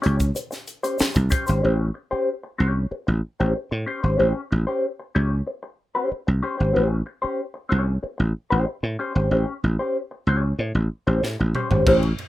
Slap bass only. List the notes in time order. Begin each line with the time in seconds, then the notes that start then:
0.06 C#2
1.01 muted slap bass stroke
1.16 C2
1.49 G#1
1.64 A1
2.13 muted slap bass stroke
2.60 C2
2.91 muted slap bass stroke
3.08 A1
3.40 A1
3.72 A2
4.03 G#1
4.19 A1
4.52 A1
5.16 C#2
6.12 muted slap bass stroke
6.28 C2
6.60 G#1
6.76 A1
7.24 muted slap bass stroke
7.72 C2
8.04 muted slap bass stroke
8.20 A1
8.52 A1
8.83 A2
9.15 G#1
9.31 A1
9.64 A1
10.27 C#2
10.59 A2
10.75 A1
11.07 A1
11.23 A2
11.40 A1
11.71 G#1
11.87 A1